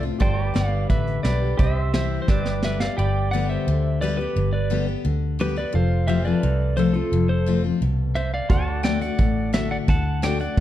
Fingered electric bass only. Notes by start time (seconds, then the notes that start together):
Already playing: C2
0.20 G1
0.55 G1
0.90 A1
1.24 B1
1.59 C2
2.28 G1
2.98 G1
3.67 D2
4.36 G1
5.05 D2
5.74 F1
6.43 C2
7.12 F1
7.81 C2
8.50 D2
9.19 A1
9.88 D2